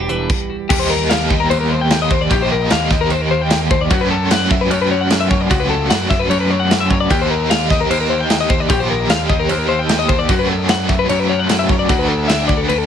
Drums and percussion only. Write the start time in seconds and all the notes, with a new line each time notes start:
0.09 closed hi-hat
0.30 kick, crash
0.70 kick, crash
1.10 snare, crash
1.30 kick
1.51 crash
1.90 snare, crash
2.11 kick
2.31 kick, crash
2.70 snare, crash
2.91 kick, snare
3.10 crash
3.50 snare, crash
3.71 kick
3.91 kick, crash
4.31 snare, crash
4.51 kick
4.71 crash
5.10 snare, crash
5.31 kick
5.51 kick, crash
5.90 snare, crash
6.11 kick, snare
6.31 crash
6.71 snare, crash
6.90 kick
7.11 kick, crash
7.51 snare, crash
7.70 kick, snare
7.91 crash
8.30 snare, crash
8.50 kick
8.70 kick, crash
9.10 snare, crash
9.29 kick
9.49 crash
9.89 snare, crash
10.09 kick
10.29 kick, crash
10.69 snare, crash
10.89 kick, snare
11.09 crash
11.49 snare, crash
11.69 kick
11.89 kick, crash
12.29 snare, crash
12.49 kick
12.69 crash